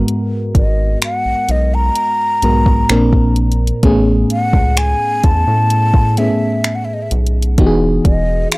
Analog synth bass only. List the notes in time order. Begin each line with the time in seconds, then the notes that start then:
0.55 G#1
1.25 B1
1.49 B1
2.43 B1
2.90 A#1
3.83 A1
4.53 C#2
5.24 E2
5.47 A2
7.11 B1
7.58 E1
8.05 E1